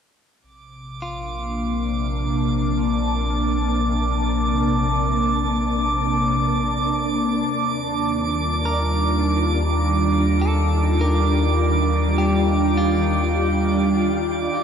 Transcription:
0.41 sub bass A#1, ambient pad C3, synth texture D6
0.80 ambient pad A#3
0.97 ambient pad D4
1.02 clean electric guitar F4
1.74 ambient pad A5
7.46 sub bass D#2, ambient pad D#3
7.76 ambient pad F4
7.91 ambient pad G3
8.65 clean electric guitar A#4
10.42 clean electric guitar A4
11.01 clean electric guitar A#4
12.18 clean electric guitar G4
12.78 clean electric guitar F4
14.54 sub bass D2, ambient pad C3, synth drone G3

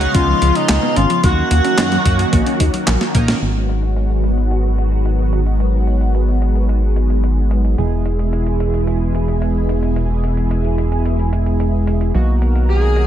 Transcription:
Already playing: analog synth pad C#3 G#3 F5, analog polysynth G#3 B3 C#4 D#4, tenor saxophone F#4, digital synth lead F#4
0.01 synth arpeggio sound B3, closed hi-hat
0.15 analog synth bass C#2, synth arpeggio sound C#4, tenor saxophone F4, digital synth lead F4, kick, closed hi-hat
0.28 synth arpeggio sound F3
0.42 analog synth bass C#2, synth arpeggio sound F3, analog polysynth G#3 B3 C#4 F4, closed hi-hat
0.55 tenor saxophone D#4, digital synth lead D#4, closed hi-hat
0.69 analog synth bass C#2, synth arpeggio sound G#3, snare, clap, closed hi-hat
0.83 synth arpeggio sound B3
0.96 analog synth bass G#1, synth arpeggio sound C#4, tenor saxophone F4, digital synth lead F4, closed hi-hat
1.10 synth arpeggio sound F3, closed hi-hat
1.24 analog synth bass D#2, analog synth pad D#3 F#3 A#3 C#4 F#4, synth arpeggio sound F#3, analog polysynth A#3 C#4 D#4 F#4, tenor saxophone F#4, digital synth lead F#4, kick, closed hi-hat
1.51 analog synth bass D#2, synth arpeggio sound A#3, closed hi-hat
1.65 synth arpeggio sound C#4, closed hi-hat
1.78 analog synth bass F#2, synth arpeggio sound D#4, snare, clap, closed hi-hat
1.92 synth arpeggio sound F#3, closed hi-hat
2.05 analog synth bass F#2, synth arpeggio sound F#3, analog polysynth A#3 C#4 D#4 F#4, kick, closed hi-hat
2.19 closed hi-hat
2.33 analog synth bass A#1, synth arpeggio sound A#3, kick, closed hi-hat
2.46 synth arpeggio sound C#4, closed hi-hat
2.60 analog synth bass D#2, synth arpeggio sound D#4, kick, closed hi-hat
2.74 synth arpeggio sound F#3, closed hi-hat
2.87 analog synth bass A#1, synth arpeggio sound F#3, snare, clap, closed hi-hat
3.01 snare
3.15 analog synth bass A#1, analog polysynth A#3 C#4 D#4 A#4, synth arpeggio sound A#3, kick, closed hi-hat
3.28 synth arpeggio sound C#4, snare, closed hi-hat
3.42 analog synth bass G#1, analog synth pad D#3 F#3 G#3 B3 F#4, analog polysynth G#3 B3 D#4 F#4, closed hi-hat
3.69 closed hi-hat
3.83 closed hi-hat
3.96 closed hi-hat
4.10 closed hi-hat
4.24 closed hi-hat
4.37 closed hi-hat
4.51 closed hi-hat
4.78 closed hi-hat
4.92 closed hi-hat
5.06 closed hi-hat
5.33 closed hi-hat
5.46 closed hi-hat
5.60 closed hi-hat
5.87 closed hi-hat
6.01 closed hi-hat
6.15 closed hi-hat
6.28 closed hi-hat
6.42 closed hi-hat
6.56 closed hi-hat
6.69 closed hi-hat
6.96 closed hi-hat
7.10 closed hi-hat
7.24 closed hi-hat
7.51 closed hi-hat
7.65 closed hi-hat
7.78 analog synth bass E1, analog synth pad B2 E3 E4 G#4, analog polysynth G#3 B3 E4 G#4, closed hi-hat
8.06 closed hi-hat
8.19 closed hi-hat
8.33 closed hi-hat
8.47 closed hi-hat
8.60 closed hi-hat
8.74 closed hi-hat
8.87 closed hi-hat
9.15 closed hi-hat
9.28 closed hi-hat
9.42 closed hi-hat
9.69 closed hi-hat
9.83 closed hi-hat
9.96 closed hi-hat
10.24 closed hi-hat
10.37 closed hi-hat
10.51 closed hi-hat
10.65 closed hi-hat
10.78 closed hi-hat
10.92 closed hi-hat
11.05 closed hi-hat
11.19 closed hi-hat
11.33 closed hi-hat
11.46 closed hi-hat
11.60 closed hi-hat
11.87 closed hi-hat
12.01 closed hi-hat
12.15 analog synth bass B1, analog synth pad D#3 F#3 F#4 A#4, analog polysynth A#3 B3 D#4 F#4, closed hi-hat
12.42 closed hi-hat
12.55 closed hi-hat
12.69 digital synth lead G#4, tenor saxophone G#4, closed hi-hat
12.83 closed hi-hat
12.96 closed hi-hat

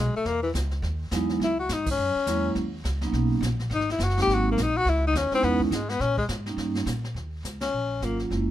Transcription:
Already playing: upright bass B1, tenor saxophone G#3
0.14 tenor saxophone A3, muted upright bass stroke
0.25 upright bass E2, tenor saxophone A#3, brush sweep, snare
0.43 tenor saxophone E3
0.54 upright bass C#2, snare, hi-hat pedal
0.71 snare
0.82 upright bass D#2, brush sweep, snare
1.11 upright bass E2, vibraphone F#3 G#3 B3 D#4 E4, snare, hi-hat pedal
1.29 snare
1.40 upright bass C#2, brush sweep, snare
1.44 tenor saxophone E4
1.60 tenor saxophone F#4
1.69 upright bass G#2, tenor saxophone D#4, snare, hi-hat pedal
1.86 kick, ride
1.91 tenor saxophone C#4
1.97 upright bass F#2, brush sweep
2.15 muted upright bass stroke
2.26 upright bass E2, vibraphone F#3 G#3 A#3 C#4 E4, snare, hi-hat pedal
2.55 upright bass D#2, brush sweep, snare
2.84 upright bass C#2, snare, hi-hat pedal
3.01 vibraphone F#3 A#3 B3 C#4 D#4, snare
3.12 upright bass B1, brush sweep, snare
3.41 upright bass A#1, snare, hi-hat pedal
3.59 snare
3.70 upright bass G#1, brush sweep, snare
3.74 tenor saxophone D#4
3.81 snare
3.90 tenor saxophone E4, snare
3.99 upright bass F#1, snare, hi-hat pedal
4.03 tenor saxophone F#4
4.10 snare
4.17 vibraphone F#3 G#3 A#3 C4 D#4, snare
4.19 tenor saxophone G4, snare
4.27 upright bass G#1, brush sweep, snare
4.34 tenor saxophone F#4
4.52 tenor saxophone A#3
4.57 upright bass A#1, snare, hi-hat pedal
4.62 tenor saxophone D#4
4.77 tenor saxophone F#4
4.85 upright bass C#2, brush sweep, snare
4.89 tenor saxophone E4
5.07 tenor saxophone D#4
5.13 upright bass D#2, tenor saxophone C#4, snare, hi-hat pedal
5.31 vibraphone G#3 B3 C#4 D#4 E4, tenor saxophone C4, muted upright bass stroke, snare
5.43 upright bass E2, tenor saxophone B3, brush sweep, snare
5.60 tenor saxophone D#3, kick
5.71 upright bass G#2, tenor saxophone G#3, snare, hi-hat pedal
5.89 tenor saxophone B3, snare
6.00 upright bass A#2, tenor saxophone C#4, brush sweep, snare
6.18 tenor saxophone G#3, kick
6.28 upright bass G#2, snare, hi-hat pedal
6.46 vibraphone G3 A#3 C#4 D#4, snare
6.57 upright bass G2, brush sweep, snare
6.75 snare
6.86 upright bass A#2, snare, hi-hat pedal
7.04 snare
7.14 upright bass D#2, brush sweep, snare
7.43 upright bass C#2, snare, hi-hat pedal
7.61 tenor saxophone C#4, snare, ride
7.72 upright bass A#1, brush sweep
8.01 upright bass G#1, vibraphone F#3 A#3 C#4 F4, tenor saxophone A#3, snare, hi-hat pedal
8.19 snare
8.30 upright bass F#1, vibraphone G#3 A#3 C#4 E4, brush sweep, snare

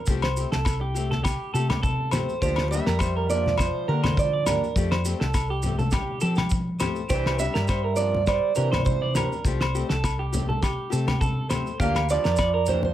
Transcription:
0.06 fingered electric bass C2, nylon-string guitar F3 A3, kick, maracas
0.10 nylon-string guitar C4 G4
0.22 clean electric guitar C5, snare, low agogo
0.37 nylon-string guitar A3 C4 G4, maracas
0.52 fingered electric bass C2, clean electric guitar A4, snare, maracas
0.65 kick, snare, low agogo, maracas
0.81 clean electric guitar G4
0.94 nylon-string guitar A3 C4 G4, maracas
1.11 clean electric guitar A4, snare, high conga
1.24 clean electric guitar G4, kick, snare, low agogo, maracas
1.54 fingered electric bass C3, nylon-string guitar G4, clean electric guitar A4, muted nylon-string guitar stroke, maracas
1.58 nylon-string guitar A3
1.70 clean electric guitar G4, snare, high conga, low conga, low agogo
1.83 clean electric guitar A4, kick, high conga, maracas
2.11 nylon-string guitar C4 G4, clean electric guitar C5, snare, low conga, low agogo, maracas
2.17 nylon-string guitar A3
2.29 maracas
2.41 fingered electric bass D2, nylon-string guitar F3 A#3 D4 G4, trombone F3, clean electric guitar G4, steel-string acoustic guitar C5, kick, maracas
2.56 snare, low agogo
2.71 trombone G3, nylon-string guitar A#3 D4 G4, steel-string acoustic guitar E5, maracas
2.86 fingered electric bass F2, clean electric guitar A#4, snare, maracas
2.99 clean electric guitar C5, kick, snare, low agogo, maracas
3.17 clean electric guitar A#4
3.29 trombone F3, nylon-string guitar A#3 D4 G4, steel-string acoustic guitar D5, maracas
3.46 snare, high conga
3.58 trombone F3, clean electric guitar C5, steel-string acoustic guitar C5, kick, snare, low agogo, maracas
3.88 fingered electric bass D3, trombone D3, nylon-string guitar A#3 D4 G4, clean electric guitar A#4, steel-string acoustic guitar A#4
4.03 clean electric guitar C5, snare, high conga, low conga, low agogo
4.17 trombone F3, steel-string acoustic guitar D5, kick, high conga, maracas
4.33 clean electric guitar D5
4.46 nylon-string guitar A#3 D4 G4, clean electric guitar A#4, snare, low conga, low agogo, maracas
4.64 maracas
4.76 fingered electric bass F2, nylon-string guitar F3 A3 C4 G4, kick, maracas
4.91 clean electric guitar C5, snare, low agogo
5.05 nylon-string guitar A3 C4 G4, maracas
5.20 fingered electric bass C2, clean electric guitar A4, snare
5.34 kick, snare, low agogo, maracas
5.50 clean electric guitar G4
5.63 nylon-string guitar C4 G4, low conga, maracas
5.67 nylon-string guitar A3
5.79 clean electric guitar A4, high conga, maracas
5.91 clean electric guitar G4, kick, snare, high conga, low agogo, maracas
6.21 fingered electric bass F3, nylon-string guitar C4 G4, clean electric guitar A4, muted nylon-string guitar stroke, maracas
6.36 clean electric guitar G4, snare, high conga, low agogo, maracas
6.50 kick, high conga, maracas
6.80 nylon-string guitar C4 G4, clean electric guitar C5, snare, low conga, low agogo, maracas
6.85 nylon-string guitar A3
6.96 maracas
7.09 fingered electric bass C2, nylon-string guitar E3 C4 D4 G4, trombone E3, clean electric guitar G4, steel-string acoustic guitar C5, kick, maracas
7.26 snare, low agogo
7.38 trombone G3, nylon-string guitar C4 D4 G4, steel-string acoustic guitar E5, maracas
7.54 fingered electric bass G2, clean electric guitar A#4, snare, maracas
7.67 clean electric guitar C5, kick, snare, low agogo, maracas
7.84 clean electric guitar A#4
7.96 trombone F3, nylon-string guitar D4 G4, steel-string acoustic guitar D5, maracas
8.01 nylon-string guitar C4
8.15 high conga
8.26 trombone G3, clean electric guitar C5, steel-string acoustic guitar D5, kick, snare, low agogo, maracas
8.55 fingered electric bass C3, trombone E3, nylon-string guitar D4 G4, clean electric guitar A#4, steel-string acoustic guitar C5, maracas
8.60 nylon-string guitar C4
8.72 clean electric guitar C5, snare, high conga, low conga, low agogo
8.85 trombone E3, steel-string acoustic guitar C5, kick, high conga, maracas
9.02 clean electric guitar D5
9.15 nylon-string guitar D4 G4, clean electric guitar A#4, snare, low conga, low agogo, maracas
9.19 nylon-string guitar C4
9.32 maracas
9.45 fingered electric bass C2, nylon-string guitar F3 A3 C4 G4, kick, maracas
9.61 clean electric guitar C5, snare, low agogo
9.75 nylon-string guitar A3 C4 G4, maracas
9.89 fingered electric bass C2, clean electric guitar A4, snare, maracas
10.04 kick, snare, low agogo, maracas
10.19 clean electric guitar G4
10.32 nylon-string guitar A3 C4 G4, low conga, maracas
10.49 clean electric guitar A4, high conga
10.63 clean electric guitar G4, kick, snare, low agogo, maracas
10.90 fingered electric bass C3, nylon-string guitar A3 C4 G4, clean electric guitar A4, maracas
11.08 clean electric guitar G4, snare, high conga, low conga, low agogo
11.21 clean electric guitar A4, kick, high conga, maracas
11.50 nylon-string guitar A3 C4 G4, clean electric guitar C5, snare, low conga, low agogo, maracas
11.67 maracas
11.80 fingered electric bass D2, nylon-string guitar F3 A#3 D4 G4, trombone A#3, clean electric guitar G4, steel-string acoustic guitar F5, kick, maracas
11.95 snare, low agogo
12.09 trombone F3, nylon-string guitar D4 G4, steel-string acoustic guitar D5, maracas
12.24 fingered electric bass F2, clean electric guitar A#4, snare, maracas
12.36 clean electric guitar D5, kick, snare, low agogo, maracas
12.54 clean electric guitar A#4
12.66 nylon-string guitar G4, steel-string acoustic guitar C5, low conga, maracas
12.71 trombone E3, nylon-string guitar A#3 D4
12.83 steel-string acoustic guitar C5, high conga
12.88 trombone F3

